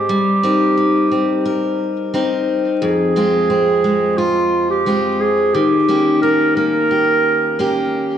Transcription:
0.00 0.17 G#3 medium
0.00 0.43 C4 medium
0.00 1.79 G4 loud
0.09 2.82 G3 medium
0.43 1.11 C4 medium
0.43 0.77 D#4 medium
0.43 1.44 A#4 medium
0.77 2.14 D#4 medium
1.11 2.13 C4 medium
1.45 2.14 A#4 medium
2.14 3.16 C4 medium
2.14 3.16 D#4 medium
2.14 2.90 A#4 medium
2.82 5.55 F2 medium
2.82 4.19 G#4 loud
3.16 3.83 G#3 medium
3.16 3.49 C4 medium
3.16 4.17 F4 medium
3.50 4.86 C4 medium
3.84 4.85 G#3 medium
4.17 4.70 F4 loud
4.17 4.86 F4 medium
4.70 5.22 G4 medium
4.86 5.62 G#3 medium
4.86 5.62 C4 medium
4.86 5.63 F4 medium
5.20 5.55 G#4 loud
5.54 8.18 D#3 medium
5.54 6.22 G4 loud
5.89 6.56 A#3 medium
5.89 6.22 C#4 medium
5.89 6.90 G4 medium
6.22 7.58 C#4 medium
6.22 6.54 A#4 loud
6.56 7.58 A#3 medium
6.56 7.89 A#4 loud
6.91 7.59 G4 medium
7.59 8.18 A#3 medium
7.59 8.18 C#4 medium
7.59 8.18 G4 medium

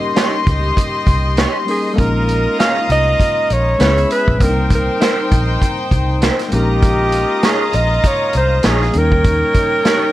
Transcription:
0.00 1.62 G3 medium
0.00 1.63 A#3 medium
0.00 1.64 C#4 medium
0.00 1.65 D#4 medium
0.00 1.94 G4 medium
0.00 1.66 A#4 medium
0.00 1.94 D#5 medium
0.00 1.94 C6 loud
0.15 0.34 D#4 medium
0.15 0.34 G4 medium
0.15 0.34 C#5 medium
0.15 snare loud
0.15 closed hi-hat medium
0.47 0.71 C#2 medium
0.47 kick loud
0.47 closed hi-hat medium
0.77 kick medium
0.77 closed hi-hat loud
1.07 1.45 C2 medium
1.07 kick loud
1.07 closed hi-hat medium
1.37 1.55 D#4 medium
1.37 1.56 G4 medium
1.37 1.56 C#5 medium
1.37 snare loud
1.37 closed hi-hat medium
1.66 1.97 G3 soft
1.66 1.94 A#3 soft
1.66 1.96 C#4 soft
1.66 1.97 D#4 soft
1.66 1.99 A#4 medium
1.66 open hi-hat medium
1.70 1.92 G#4 medium
1.94 3.74 G#3 medium
1.94 3.75 A#3 medium
1.94 3.76 C#4 medium
1.94 2.02 A4 medium
1.98 2.46 A#1 loud
1.98 3.77 D#4 medium
1.98 3.77 F4 medium
1.98 3.77 A#4 medium
1.98 2.59 A#4 loud
1.98 3.76 D#5 medium
1.98 3.76 A#5 loud
1.98 kick loud
1.98 closed hi-hat medium
2.29 closed hi-hat medium
2.58 2.76 D#4 medium
2.58 2.77 G#4 medium
2.58 2.77 C#5 medium
2.58 2.88 F5 loud
2.58 snare loud
2.58 closed hi-hat medium
2.89 3.13 C2 medium
2.89 3.54 D#5 loud
2.89 closed hi-hat medium
3.20 kick medium
3.20 closed hi-hat medium
3.50 3.74 A#1 medium
3.50 4.11 C#5 loud
3.50 closed hi-hat medium
3.78 4.04 C#2 loud
3.78 4.40 G#3 medium
3.78 4.40 B3 medium
3.78 4.40 C#4 medium
3.78 3.98 E4 medium
3.78 4.41 E4 medium
3.78 4.39 G#4 medium
3.78 3.98 B4 medium
3.78 4.42 B4 medium
3.78 3.98 C#5 medium
3.78 4.39 E5 medium
3.78 4.39 B5 medium
3.78 snare loud
3.78 closed hi-hat medium
3.98 closed hi-hat medium
4.11 4.44 B4 loud
4.11 closed hi-hat medium
4.28 4.41 A#1 medium
4.28 kick loud
4.37 4.88 C2 loud
4.37 6.47 G3 medium
4.37 6.48 A#3 medium
4.37 6.49 C4 medium
4.37 6.49 D#4 medium
4.37 6.49 C5 loud
4.37 6.48 G5 loud
4.37 kick loud
4.37 closed hi-hat loud
4.42 4.49 D4 medium
4.42 4.72 A#4 loud
4.42 6.50 A#4 medium
4.49 6.52 D#4 medium
4.70 kick loud
4.70 closed hi-hat medium
4.75 5.90 A#4 medium
5.00 5.18 D#4 medium
5.00 5.19 A#4 medium
5.00 5.19 C5 medium
5.00 snare loud
5.00 closed hi-hat medium
5.32 5.56 A#1 loud
5.32 kick loud
5.32 closed hi-hat medium
5.62 kick medium
5.62 closed hi-hat medium
5.91 6.29 C2 medium
5.91 kick loud
5.91 closed hi-hat medium
6.22 6.40 D#4 medium
6.22 6.40 A#4 medium
6.22 6.40 C5 medium
6.22 snare loud
6.22 closed hi-hat medium
6.39 snare soft
6.39 closed hi-hat medium
6.48 8.89 G#3 medium
6.48 8.90 A#3 medium
6.48 8.90 C#4 medium
6.48 closed hi-hat medium
6.53 7.24 A#1 loud
6.53 8.91 D#4 medium
6.53 8.91 F4 medium
6.53 7.48 G4 loud
6.53 8.92 A#4 medium
6.53 8.91 D#5 medium
6.53 8.91 A#5 loud
6.82 kick loud
6.82 closed hi-hat medium
7.12 closed hi-hat medium
7.43 7.61 D#4 medium
7.43 7.61 G#4 medium
7.43 7.77 G#4 medium
7.43 7.62 C#5 medium
7.43 snare loud
7.43 closed hi-hat medium
7.73 7.98 A#1 medium
7.73 8.09 D#5 loud
7.73 closed hi-hat medium
8.04 8.36 C#5 loud
8.04 kick medium
8.04 closed hi-hat medium
8.33 8.58 C2 medium
8.33 closed hi-hat medium
8.37 8.69 C5 loud
8.63 8.89 A#1 loud
8.63 8.82 D#4 medium
8.63 8.82 G#4 medium
8.63 8.82 C#5 medium
8.63 snare loud
8.63 closed hi-hat medium
8.68 9.00 G#4 medium
8.82 snare soft
8.91 10.12 G3 medium
8.91 10.12 A#3 medium
8.91 10.12 C#4 medium
8.91 closed hi-hat medium
8.95 9.42 D#2 loud
8.95 10.12 D#4 medium
8.95 10.12 A#4 medium
8.95 10.12 A#4 loud
8.95 10.12 C#5 medium
8.95 10.12 G5 loud
9.12 kick loud
9.24 kick loud
9.24 closed hi-hat medium
9.54 kick loud
9.54 closed hi-hat medium
9.85 10.03 D#4 medium
9.85 10.04 G4 loud
9.85 10.04 C#5 medium
9.85 snare loud
9.85 closed hi-hat medium

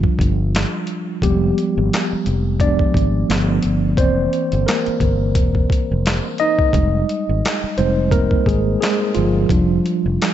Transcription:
0.00 1.23 F3 medium
0.00 1.23 G3 medium
0.00 1.23 D4 medium
0.00 0.83 F4 medium
0.00 kick medium
0.19 0.64 G1 medium
0.19 kick medium
0.19 closed hi-hat medium
0.55 snare loud
0.55 clap medium
0.55 closed hi-hat medium
0.87 closed hi-hat medium
1.22 1.51 F1 loud
1.22 2.60 F3 soft
1.22 2.57 G3 medium
1.22 2.61 G#3 soft
1.22 2.61 B3 medium
1.22 2.64 G4 medium
1.22 kick loud
1.22 closed hi-hat medium
1.58 closed hi-hat medium
1.78 1.89 G#1 medium
1.93 snare loud
1.93 clap medium
1.93 closed hi-hat medium
2.13 muted fretless electric bass stroke medium
2.26 2.83 F1 medium
2.26 closed hi-hat medium
2.60 2.92 F3 medium
2.60 2.92 G#3 soft
2.60 2.92 B3 medium
2.60 3.95 D4 medium
2.60 3.99 D5 loud
2.60 kick loud
2.60 closed hi-hat medium
2.79 kick medium
2.94 3.23 G#1 medium
2.94 kick loud
2.94 closed hi-hat medium
3.29 3.58 G1 loud
3.29 3.76 F3 medium
3.29 3.77 A3 medium
3.29 3.77 B3 medium
3.29 snare loud
3.29 clap medium
3.29 closed hi-hat medium
3.63 3.98 G1 medium
3.63 closed hi-hat medium
3.97 4.26 F1 loud
3.97 6.70 E3 medium
3.97 4.67 A#3 medium
3.97 4.64 C4 medium
3.97 4.69 C5 loud
3.97 6.70 D5 medium
3.97 kick loud
3.97 closed hi-hat medium
4.33 closed hi-hat medium
4.52 4.65 G1 medium
4.52 closed hi-hat soft
4.66 6.01 A#3 medium
4.66 6.00 A#4 medium
4.66 snare loud
4.66 clap medium
4.66 closed hi-hat medium
4.86 muted fretless electric bass stroke soft
4.86 closed hi-hat soft
5.00 5.36 G1 medium
5.00 kick loud
5.00 closed hi-hat medium
5.35 5.64 E1 medium
5.35 kick loud
5.35 closed hi-hat medium
5.55 kick medium
5.70 kick loud
5.70 closed hi-hat medium
5.91 6.19 F1 medium
6.06 snare loud
6.06 clap medium
6.06 closed hi-hat medium
6.38 6.74 D#4 medium
6.38 7.81 D#5 loud
6.38 closed hi-hat medium
6.59 kick medium
6.73 7.02 F1 loud
6.73 7.21 G3 medium
6.73 7.22 G#3 medium
6.73 7.22 D#4 medium
6.73 kick loud
6.73 closed hi-hat medium
7.09 closed hi-hat medium
7.29 7.41 G#1 medium
7.45 snare loud
7.45 clap medium
7.45 closed hi-hat medium
7.64 muted fretless electric bass stroke medium
7.78 8.35 F1 loud
7.78 8.08 G3 soft
7.78 8.09 G#3 soft
7.78 8.10 C4 medium
7.78 8.09 D#4 soft
7.78 8.09 C5 medium
7.78 closed hi-hat medium
8.11 8.28 A#3 medium
8.11 8.27 A#4 loud
8.11 kick loud
8.11 closed hi-hat medium
8.31 kick medium
8.46 8.75 G#1 medium
8.46 8.79 G#3 medium
8.46 8.79 G#4 medium
8.46 kick medium
8.46 closed hi-hat medium
8.81 9.13 G#3 medium
8.81 9.16 G#4 medium
8.81 snare loud
8.81 clap medium
8.81 closed hi-hat medium
9.15 9.44 G1 medium
9.15 9.49 F3 medium
9.15 10.34 F4 medium
9.15 closed hi-hat medium
9.49 9.78 F1 loud
9.49 10.34 F3 medium
9.49 10.34 G3 soft
9.49 10.34 D4 medium
9.49 kick loud
9.49 closed hi-hat medium
9.86 closed hi-hat medium
10.06 10.17 F1 medium
10.22 snare loud
10.22 clap medium
10.22 closed hi-hat medium

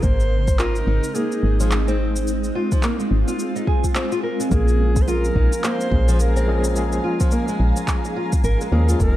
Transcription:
0.02 0.83 G#1 loud
0.02 4.48 G#3 medium
0.02 0.58 A#3 medium
0.02 4.48 C4 medium
0.02 2.25 D#4 medium
0.02 0.60 C5 loud
0.02 kick loud
0.02 shaker soft
0.20 shaker soft
0.48 kick medium
0.48 shaker medium
0.58 0.75 F4 medium
0.58 1.16 A#4 loud
0.58 clap medium
0.58 shaker soft
0.76 shaker soft
0.87 1.00 G#1 medium
0.87 1.03 D#4 medium
1.04 shaker medium
1.14 1.58 A#3 medium
1.14 1.99 G#4 medium
1.14 shaker medium
1.32 shaker soft
1.43 2.51 G#1 medium
1.60 1.71 F3 medium
1.60 shaker medium
1.71 clap loud
1.71 shaker medium
1.88 2.42 C4 medium
1.88 shaker soft
2.16 shaker medium
2.27 4.49 F4 medium
2.27 shaker soft
2.44 shaker soft
2.55 2.70 F4 medium
2.72 2.83 F3 medium
2.72 kick medium
2.72 shaker medium
2.83 2.99 A#3 medium
2.83 clap medium
2.83 shaker soft
3.00 3.26 G#3 medium
3.00 shaker soft
3.11 3.24 G#1 medium
3.28 3.54 F4 medium
3.28 shaker medium
3.39 shaker medium
3.56 3.67 D#4 medium
3.56 shaker soft
3.67 3.83 G#4 medium
3.67 kick medium
3.84 kick medium
3.84 shaker medium
3.95 4.11 C4 medium
3.95 clap loud
3.95 shaker medium
4.12 4.22 F4 medium
4.12 shaker soft
4.23 4.39 A#4 medium
4.40 4.50 G#3 medium
4.40 shaker medium
4.49 5.31 A#1 loud
4.49 5.88 F3 medium
4.49 5.88 G#3 medium
4.49 5.89 A#3 medium
4.49 5.07 A#3 medium
4.49 5.89 C#4 medium
4.49 9.17 G#4 medium
4.49 5.03 G#4 medium
4.49 9.17 F5 medium
4.49 8.96 G#5 medium
4.49 8.96 A#5 medium
4.49 kick loud
4.49 shaker medium
4.53 5.90 G#4 medium
4.68 shaker soft
4.96 kick loud
4.96 shaker medium
5.02 5.10 C5 medium
5.08 5.24 F4 medium
5.08 5.65 A#4 loud
5.08 shaker medium
5.25 shaker soft
5.35 5.48 A#1 medium
5.35 5.52 D#4 medium
5.35 kick medium
5.53 shaker medium
5.64 6.07 A#3 medium
5.64 6.14 C5 loud
5.64 clap medium
5.64 shaker medium
5.81 shaker soft
5.91 6.99 A#1 medium
5.91 6.45 F3 medium
5.91 6.45 G#3 medium
5.91 6.45 A#3 medium
5.91 6.45 C#4 medium
5.91 6.46 G#4 medium
5.91 kick loud
6.08 6.19 F3 loud
6.08 shaker medium
6.14 6.21 C5 medium
6.20 6.65 A#4 medium
6.20 shaker medium
6.36 6.91 C4 medium
6.36 shaker soft
6.47 6.73 F3 medium
6.47 6.73 G#3 medium
6.47 6.73 A#3 medium
6.47 6.74 C#4 medium
6.47 6.74 G#4 loud
6.64 shaker medium
6.74 8.68 F3 medium
6.74 8.69 G#3 medium
6.74 8.69 A#3 medium
6.74 8.70 G#4 medium
6.74 shaker medium
6.92 shaker soft
7.04 7.19 F4 medium
7.20 7.31 F3 medium
7.20 kick loud
7.20 shaker medium
7.31 7.48 A#3 medium
7.31 shaker medium
7.48 7.75 G#3 medium
7.48 shaker soft
7.60 7.73 A#1 medium
7.76 8.03 F4 medium
7.76 shaker medium
7.88 kick medium
7.88 clap medium
7.88 shaker medium
8.05 8.16 D#4 medium
8.05 shaker soft
8.16 8.43 F4 medium
8.33 kick loud
8.33 shaker medium
8.44 8.57 G#1 medium
8.44 8.59 A#4 loud
8.44 shaker medium
8.61 8.71 G#3 medium
8.61 shaker soft
8.71 8.95 D#2 medium
8.71 8.97 F3 medium
8.71 8.97 G#3 medium
8.71 8.97 A#3 medium
8.71 8.88 A#3 loud
8.71 8.98 C#4 medium
8.71 8.98 G#4 loud
8.89 8.99 F4 medium
8.89 shaker medium
8.98 9.17 F1 loud
8.98 9.17 F3 medium
8.98 9.17 G#3 medium
8.98 9.17 A#3 medium
8.98 9.17 C4 medium
8.98 9.17 D#4 medium
8.98 9.17 A#4 loud
8.98 kick loud
8.98 shaker medium
9.02 9.17 G#4 medium

